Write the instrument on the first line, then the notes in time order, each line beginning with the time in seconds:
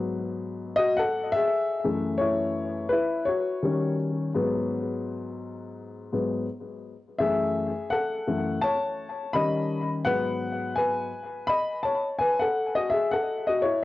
upright piano
Already playing: G#2 F#3 B3
0.76 F#4 D#5
0.97 A4 F#5
1.32 G#4 E5
1.84 F#2 E3 A3
2.18 E4 C#5
2.89 E4 B4
3.25 F#4 C#5
3.63 D#3 G3 C#4
4.34 G#2 F#3 B3
6.13 G#2 F#3 B3
7.19 F#2 E3 A3 G#4 E5
7.90 A4 F#5
8.27 F#2 E3 A3
8.62 C#5 A5
9.33 D#3 G3 C#4 D#5 B5
10.05 G#2 F#3 B3 B4 F#5
10.76 B4 G#5
11.47 D#5 B5
11.83 C#5 A5
12.19 B4 G#5
12.40 A4 F#5
12.75 F#4 D#5
12.90 G#4 E5
13.11 A4 F#5
13.47 F#4 D#5
13.62 E4 C#5